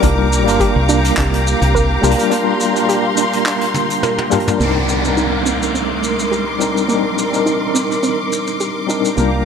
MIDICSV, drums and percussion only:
0, 0, Header, 1, 2, 480
1, 0, Start_track
1, 0, Key_signature, -3, "minor"
1, 0, Tempo, 571429
1, 26, Time_signature, 4, 2, 24, 8
1, 7938, End_track
2, 0, Start_track
2, 0, Title_t, "Drums"
2, 21, Note_on_c, 9, 42, 76
2, 25, Note_on_c, 9, 36, 94
2, 26, Note_on_c, 9, 82, 48
2, 105, Note_off_c, 9, 42, 0
2, 109, Note_off_c, 9, 36, 0
2, 110, Note_off_c, 9, 82, 0
2, 274, Note_on_c, 9, 82, 85
2, 358, Note_off_c, 9, 82, 0
2, 399, Note_on_c, 9, 42, 64
2, 408, Note_on_c, 9, 82, 55
2, 483, Note_off_c, 9, 42, 0
2, 492, Note_off_c, 9, 82, 0
2, 506, Note_on_c, 9, 36, 97
2, 506, Note_on_c, 9, 42, 60
2, 509, Note_on_c, 9, 82, 53
2, 590, Note_off_c, 9, 36, 0
2, 590, Note_off_c, 9, 42, 0
2, 593, Note_off_c, 9, 82, 0
2, 749, Note_on_c, 9, 82, 80
2, 833, Note_off_c, 9, 82, 0
2, 877, Note_on_c, 9, 42, 59
2, 884, Note_on_c, 9, 82, 61
2, 961, Note_off_c, 9, 42, 0
2, 968, Note_off_c, 9, 82, 0
2, 983, Note_on_c, 9, 39, 88
2, 986, Note_on_c, 9, 36, 101
2, 991, Note_on_c, 9, 82, 51
2, 993, Note_on_c, 9, 42, 69
2, 1067, Note_off_c, 9, 39, 0
2, 1070, Note_off_c, 9, 36, 0
2, 1075, Note_off_c, 9, 82, 0
2, 1077, Note_off_c, 9, 42, 0
2, 1122, Note_on_c, 9, 42, 64
2, 1206, Note_off_c, 9, 42, 0
2, 1235, Note_on_c, 9, 82, 82
2, 1319, Note_off_c, 9, 82, 0
2, 1359, Note_on_c, 9, 42, 55
2, 1362, Note_on_c, 9, 82, 55
2, 1443, Note_off_c, 9, 42, 0
2, 1446, Note_off_c, 9, 82, 0
2, 1466, Note_on_c, 9, 36, 89
2, 1480, Note_on_c, 9, 82, 50
2, 1550, Note_off_c, 9, 36, 0
2, 1564, Note_off_c, 9, 82, 0
2, 1711, Note_on_c, 9, 42, 55
2, 1713, Note_on_c, 9, 82, 78
2, 1773, Note_off_c, 9, 42, 0
2, 1773, Note_on_c, 9, 42, 70
2, 1797, Note_off_c, 9, 82, 0
2, 1838, Note_off_c, 9, 42, 0
2, 1838, Note_on_c, 9, 42, 62
2, 1842, Note_on_c, 9, 82, 52
2, 1922, Note_off_c, 9, 42, 0
2, 1926, Note_off_c, 9, 82, 0
2, 1942, Note_on_c, 9, 42, 76
2, 1947, Note_on_c, 9, 82, 47
2, 2026, Note_off_c, 9, 42, 0
2, 2031, Note_off_c, 9, 82, 0
2, 2186, Note_on_c, 9, 42, 53
2, 2188, Note_on_c, 9, 82, 77
2, 2270, Note_off_c, 9, 42, 0
2, 2272, Note_off_c, 9, 82, 0
2, 2321, Note_on_c, 9, 42, 52
2, 2321, Note_on_c, 9, 82, 57
2, 2405, Note_off_c, 9, 42, 0
2, 2405, Note_off_c, 9, 82, 0
2, 2430, Note_on_c, 9, 82, 48
2, 2431, Note_on_c, 9, 42, 76
2, 2514, Note_off_c, 9, 82, 0
2, 2515, Note_off_c, 9, 42, 0
2, 2664, Note_on_c, 9, 42, 48
2, 2664, Note_on_c, 9, 82, 86
2, 2748, Note_off_c, 9, 42, 0
2, 2748, Note_off_c, 9, 82, 0
2, 2798, Note_on_c, 9, 42, 62
2, 2798, Note_on_c, 9, 82, 53
2, 2882, Note_off_c, 9, 42, 0
2, 2882, Note_off_c, 9, 82, 0
2, 2906, Note_on_c, 9, 39, 84
2, 2907, Note_on_c, 9, 42, 71
2, 2910, Note_on_c, 9, 82, 55
2, 2990, Note_off_c, 9, 39, 0
2, 2991, Note_off_c, 9, 42, 0
2, 2994, Note_off_c, 9, 82, 0
2, 3033, Note_on_c, 9, 42, 69
2, 3117, Note_off_c, 9, 42, 0
2, 3144, Note_on_c, 9, 42, 49
2, 3144, Note_on_c, 9, 48, 63
2, 3152, Note_on_c, 9, 82, 78
2, 3228, Note_off_c, 9, 42, 0
2, 3228, Note_off_c, 9, 48, 0
2, 3236, Note_off_c, 9, 82, 0
2, 3276, Note_on_c, 9, 42, 63
2, 3282, Note_on_c, 9, 82, 59
2, 3360, Note_off_c, 9, 42, 0
2, 3366, Note_off_c, 9, 82, 0
2, 3386, Note_on_c, 9, 47, 76
2, 3390, Note_on_c, 9, 82, 47
2, 3470, Note_off_c, 9, 47, 0
2, 3474, Note_off_c, 9, 82, 0
2, 3514, Note_on_c, 9, 47, 66
2, 3598, Note_off_c, 9, 47, 0
2, 3623, Note_on_c, 9, 42, 51
2, 3625, Note_on_c, 9, 82, 76
2, 3634, Note_on_c, 9, 45, 79
2, 3694, Note_off_c, 9, 42, 0
2, 3694, Note_on_c, 9, 42, 58
2, 3709, Note_off_c, 9, 82, 0
2, 3718, Note_off_c, 9, 45, 0
2, 3758, Note_off_c, 9, 42, 0
2, 3758, Note_on_c, 9, 42, 54
2, 3761, Note_on_c, 9, 45, 98
2, 3764, Note_on_c, 9, 82, 61
2, 3842, Note_off_c, 9, 42, 0
2, 3845, Note_off_c, 9, 45, 0
2, 3848, Note_off_c, 9, 82, 0
2, 3868, Note_on_c, 9, 82, 43
2, 3952, Note_off_c, 9, 82, 0
2, 4106, Note_on_c, 9, 82, 66
2, 4190, Note_off_c, 9, 82, 0
2, 4240, Note_on_c, 9, 82, 51
2, 4324, Note_off_c, 9, 82, 0
2, 4345, Note_on_c, 9, 82, 38
2, 4429, Note_off_c, 9, 82, 0
2, 4587, Note_on_c, 9, 82, 67
2, 4671, Note_off_c, 9, 82, 0
2, 4726, Note_on_c, 9, 82, 52
2, 4810, Note_off_c, 9, 82, 0
2, 4833, Note_on_c, 9, 82, 41
2, 4917, Note_off_c, 9, 82, 0
2, 5070, Note_on_c, 9, 82, 67
2, 5154, Note_off_c, 9, 82, 0
2, 5202, Note_on_c, 9, 82, 49
2, 5286, Note_off_c, 9, 82, 0
2, 5313, Note_on_c, 9, 82, 41
2, 5397, Note_off_c, 9, 82, 0
2, 5552, Note_on_c, 9, 82, 66
2, 5636, Note_off_c, 9, 82, 0
2, 5688, Note_on_c, 9, 82, 47
2, 5772, Note_off_c, 9, 82, 0
2, 5790, Note_on_c, 9, 82, 40
2, 5874, Note_off_c, 9, 82, 0
2, 6035, Note_on_c, 9, 82, 75
2, 6119, Note_off_c, 9, 82, 0
2, 6164, Note_on_c, 9, 82, 45
2, 6248, Note_off_c, 9, 82, 0
2, 6273, Note_on_c, 9, 82, 37
2, 6357, Note_off_c, 9, 82, 0
2, 6513, Note_on_c, 9, 82, 81
2, 6597, Note_off_c, 9, 82, 0
2, 6649, Note_on_c, 9, 82, 44
2, 6733, Note_off_c, 9, 82, 0
2, 6748, Note_on_c, 9, 82, 47
2, 6832, Note_off_c, 9, 82, 0
2, 6992, Note_on_c, 9, 82, 81
2, 7076, Note_off_c, 9, 82, 0
2, 7117, Note_on_c, 9, 82, 55
2, 7201, Note_off_c, 9, 82, 0
2, 7227, Note_on_c, 9, 82, 43
2, 7311, Note_off_c, 9, 82, 0
2, 7472, Note_on_c, 9, 82, 61
2, 7556, Note_off_c, 9, 82, 0
2, 7602, Note_on_c, 9, 82, 50
2, 7686, Note_off_c, 9, 82, 0
2, 7706, Note_on_c, 9, 82, 46
2, 7790, Note_off_c, 9, 82, 0
2, 7938, End_track
0, 0, End_of_file